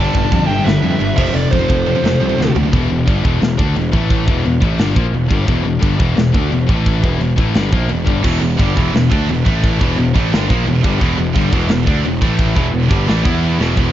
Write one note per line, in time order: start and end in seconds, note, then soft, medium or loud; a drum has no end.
0.00 0.13 G2 medium
0.00 0.14 D3 medium
0.00 0.14 G3 loud
0.00 0.44 D5 medium
0.00 0.47 A5 loud
0.15 0.25 G1 medium
0.15 0.23 G2 medium
0.15 0.23 D3 medium
0.15 kick medium
0.24 0.32 G2 medium
0.24 0.32 D3 medium
0.32 0.43 F2 medium
0.32 0.48 G2 medium
0.32 0.48 D3 medium
0.32 kick medium
0.32 china medium
0.46 0.60 G1 loud
0.46 0.63 E5 medium
0.46 0.66 G5 loud
0.50 0.58 G2 medium
0.50 0.58 D3 medium
0.59 0.65 G2 medium
0.59 0.66 D3 medium
0.64 0.77 G1 loud
0.64 0.82 G2 medium
0.64 0.82 D3 medium
0.64 1.13 B4 medium
0.64 1.15 E5 loud
0.64 snare loud
0.64 china medium
0.83 0.94 F2 medium
0.83 0.91 G2 medium
0.83 0.91 D3 medium
0.92 1.00 G2 medium
0.92 1.01 D3 medium
1.00 1.11 G1 medium
1.00 1.16 G2 medium
1.00 1.16 D3 medium
1.00 china medium
1.16 1.28 F1 medium
1.16 1.25 F2 medium
1.16 1.25 C3 medium
1.16 1.26 F3 medium
1.16 1.34 C5 medium
1.16 1.35 E5 medium
1.16 kick loud
1.16 crash loud
1.27 1.34 F2 medium
1.27 1.34 C3 medium
1.34 1.45 F1 loud
1.34 1.50 F2 medium
1.34 1.51 C3 medium
1.34 1.51 A4 medium
1.34 1.52 D5 medium
1.34 china medium
1.51 1.63 F1 medium
1.51 1.60 F2 medium
1.51 1.60 C3 medium
1.51 2.51 A4 medium
1.51 2.51 C5 medium
1.51 kick medium
1.61 1.68 F2 medium
1.61 1.69 C3 loud
1.69 1.91 F1 medium
1.69 1.84 F2 medium
1.69 1.85 C3 medium
1.69 kick medium
1.69 china medium
1.87 1.94 F2 medium
1.87 1.94 C3 medium
1.95 2.03 F2 medium
1.95 2.04 C3 medium
2.04 2.14 F1 loud
2.04 2.19 F2 medium
2.04 2.20 C3 medium
2.04 snare loud
2.04 china medium
2.22 2.32 C2 medium
2.22 2.28 F2 medium
2.22 2.29 C3 medium
2.29 2.38 F2 medium
2.29 2.38 C3 medium
2.39 2.49 D2 medium
2.39 2.54 F2 medium
2.39 2.54 C3 medium
2.39 snare medium
2.55 2.66 D2 medium
2.55 2.64 F2 medium
2.55 2.64 C3 medium
2.55 floor tom medium
2.65 2.73 F2 medium
2.65 2.73 C3 medium
2.73 2.89 E1 medium
2.73 2.89 E2 medium
2.73 2.90 B2 medium
2.73 2.90 E3 loud
2.73 kick loud
2.73 china medium
2.90 3.06 E1 medium
2.90 3.04 E2 medium
2.90 3.04 B2 medium
3.07 3.23 G1 medium
3.07 3.23 G2 medium
3.07 3.24 D3 loud
3.07 3.24 G3 loud
3.07 kick loud
3.07 china medium
3.24 3.40 E1 loud
3.24 3.39 E2 medium
3.24 3.40 B2 loud
3.24 3.41 E3 loud
3.24 kick loud
3.41 3.58 E1 medium
3.41 3.55 E2 medium
3.41 3.55 B2 medium
3.41 snare loud
3.41 china medium
3.58 3.75 D2 loud
3.58 3.75 D3 medium
3.58 3.75 A3 medium
3.58 3.75 D4 loud
3.58 kick loud
3.76 3.92 E1 medium
3.76 3.90 E2 medium
3.76 3.90 B2 medium
3.76 china medium
3.92 4.25 A1 loud
3.92 4.26 A2 medium
3.92 4.27 E3 loud
3.92 4.27 A3 loud
3.92 kick loud
4.10 kick loud
4.10 china medium
4.27 4.44 E1 medium
4.27 4.44 E2 medium
4.27 4.45 B2 medium
4.27 4.45 E3 medium
4.27 kick loud
4.45 4.61 E1 medium
4.45 4.59 E2 medium
4.45 4.59 B2 medium
4.45 china medium
4.61 4.78 A1 loud
4.61 4.78 A2 loud
4.61 4.78 E3 loud
4.61 4.79 A3 loud
4.61 kick loud
4.78 4.95 G1 loud
4.78 4.95 G2 medium
4.78 4.94 D3 loud
4.78 4.95 G3 loud
4.78 snare loud
4.78 china medium
4.94 5.12 A#1 loud
4.94 5.12 A#2 medium
4.94 5.13 F3 loud
4.94 5.13 A#3 loud
4.94 kick loud
5.12 5.29 E1 medium
5.12 5.27 E2 medium
5.12 5.27 B2 medium
5.12 china medium
5.28 5.47 G1 medium
5.28 5.46 G2 medium
5.28 5.46 D3 medium
5.28 5.47 G3 loud
5.28 kick loud
5.46 5.64 E1 loud
5.46 5.62 E2 medium
5.46 5.62 B2 medium
5.46 5.65 E3 loud
5.46 kick loud
5.46 china medium
5.63 5.81 E1 medium
5.63 5.78 E2 medium
5.63 5.78 B2 medium
5.79 5.99 G1 medium
5.79 5.97 G2 medium
5.79 5.98 D3 medium
5.79 5.98 G3 loud
5.79 kick loud
5.79 china medium
5.98 6.16 E1 loud
5.98 6.13 E2 medium
5.98 6.14 B2 loud
5.98 6.16 E3 loud
5.98 kick loud
6.14 6.33 E1 medium
6.14 6.29 E2 medium
6.14 6.30 B2 medium
6.14 snare loud
6.14 china medium
6.32 6.51 D2 loud
6.32 6.49 D3 medium
6.32 6.50 A3 loud
6.32 6.51 D4 loud
6.32 kick loud
6.49 6.68 E1 medium
6.49 6.64 E2 medium
6.49 6.64 B2 medium
6.49 china medium
6.67 7.01 A1 loud
6.67 7.02 A2 medium
6.67 7.02 E3 loud
6.67 7.02 A3 loud
6.67 kick loud
6.86 kick loud
6.86 china medium
7.02 7.19 E1 loud
7.02 7.19 E2 medium
7.02 7.20 B2 medium
7.02 7.21 E3 medium
7.02 kick loud
7.19 7.36 E1 medium
7.19 7.34 E2 medium
7.19 7.35 B2 medium
7.19 china medium
7.36 7.54 A1 loud
7.36 7.54 A2 medium
7.36 7.54 E3 loud
7.36 7.55 A3 loud
7.36 kick loud
7.54 7.71 G1 loud
7.54 7.72 G2 loud
7.54 7.71 D3 loud
7.54 7.72 G3 loud
7.54 snare loud
7.54 china medium
7.72 7.89 A#1 loud
7.72 7.89 A#2 loud
7.72 7.89 F3 loud
7.72 7.90 A#3 medium
7.72 kick loud
7.89 8.06 E1 medium
7.89 8.03 E2 medium
7.89 8.03 B2 medium
7.89 china medium
8.05 8.23 G1 medium
8.05 8.22 G2 medium
8.05 8.23 D3 medium
8.05 8.24 G3 medium
8.05 kick loud
8.23 8.41 E1 medium
8.23 8.39 E2 medium
8.23 8.40 B2 loud
8.23 8.41 E3 loud
8.23 kick loud
8.23 crash loud
8.23 china medium
8.41 8.58 E1 medium
8.41 8.55 E2 medium
8.41 8.56 B2 medium
8.57 8.75 G1 medium
8.57 8.75 G2 medium
8.57 8.75 D3 medium
8.57 8.76 G3 loud
8.57 kick loud
8.57 china medium
8.75 8.92 E1 loud
8.75 8.91 E2 medium
8.75 8.92 B2 loud
8.75 8.93 E3 loud
8.75 kick loud
8.93 9.09 E1 medium
8.93 9.07 E2 medium
8.93 9.07 B2 medium
8.93 snare loud
8.93 china medium
9.11 9.27 D2 loud
9.11 9.28 D3 medium
9.11 9.28 A3 medium
9.11 9.29 D4 loud
9.11 kick loud
9.29 9.45 E1 medium
9.29 9.43 E2 medium
9.29 9.43 B2 medium
9.29 china medium
9.46 9.78 A1 loud
9.46 9.80 A2 medium
9.46 9.80 E3 loud
9.46 9.80 A3 loud
9.46 kick loud
9.63 kick loud
9.63 china medium
9.80 9.96 E1 medium
9.80 9.97 E2 loud
9.80 9.97 B2 loud
9.80 9.98 E3 loud
9.80 kick loud
9.98 10.14 E1 medium
9.98 10.11 E2 medium
9.98 10.12 B2 medium
9.98 china medium
10.14 10.31 A1 loud
10.14 10.31 A2 loud
10.14 10.31 E3 loud
10.14 10.32 A3 loud
10.14 kick loud
10.31 10.48 G1 loud
10.31 10.48 G2 loud
10.31 10.49 D3 loud
10.31 10.49 G3 loud
10.31 snare loud
10.31 china medium
10.49 10.66 A#1 loud
10.49 10.66 A#2 loud
10.49 10.66 F3 loud
10.49 10.67 A#3 loud
10.49 kick loud
10.66 10.82 E1 medium
10.66 10.81 E2 medium
10.66 10.81 B2 medium
10.66 china medium
10.84 11.00 G1 loud
10.84 11.00 G2 medium
10.84 11.00 D3 loud
10.84 11.01 G3 loud
10.84 kick loud
11.00 11.17 E1 medium
11.00 11.17 E2 loud
11.00 11.18 B2 loud
11.00 11.18 E3 loud
11.00 kick loud
11.00 china medium
11.18 11.34 E1 medium
11.18 11.32 E2 medium
11.18 11.33 B2 medium
11.36 11.52 G1 medium
11.36 11.52 G2 medium
11.36 11.53 D3 loud
11.36 11.53 G3 loud
11.36 kick loud
11.36 china medium
11.53 11.69 E1 loud
11.53 11.69 E2 medium
11.53 11.70 B2 loud
11.53 11.70 E3 loud
11.53 kick loud
11.69 11.86 E1 medium
11.69 11.84 E2 medium
11.69 11.84 B2 medium
11.69 snare loud
11.69 china medium
11.87 12.03 D2 loud
11.87 12.04 D3 medium
11.87 12.04 A3 loud
11.87 12.05 D4 loud
11.87 kick loud
12.04 12.21 E1 medium
12.04 12.18 E2 medium
12.04 12.18 B2 medium
12.04 china medium
12.21 12.54 A1 loud
12.21 12.55 A2 loud
12.21 12.55 E3 medium
12.21 12.56 A3 loud
12.21 kick loud
12.39 kick loud
12.39 china medium
12.55 12.72 E1 medium
12.55 12.71 E2 loud
12.55 12.72 B2 loud
12.55 12.73 E3 loud
12.55 kick loud
12.73 12.90 E1 medium
12.73 12.87 E2 medium
12.73 12.87 B2 medium
12.73 china medium
12.89 13.07 G1 loud
12.89 13.06 G2 loud
12.89 13.06 D3 medium
12.89 13.07 G3 loud
12.89 kick loud
13.07 13.25 A1 loud
13.07 13.23 A2 loud
13.07 13.23 E3 loud
13.07 13.24 A3 loud
13.07 snare loud
13.07 china medium
13.24 13.57 E2 loud
13.24 13.58 E3 medium
13.24 13.58 B3 medium
13.24 13.59 E4 medium
13.24 kick loud
13.43 china medium
13.58 13.75 E1 loud
13.58 13.75 E2 medium
13.58 13.75 B2 medium
13.58 13.76 E3 loud
13.58 snare medium
13.76 13.92 E1 medium
13.76 13.92 E2 medium
13.76 13.92 B2 medium
13.76 13.92 E3 loud
13.76 kick loud
13.76 china medium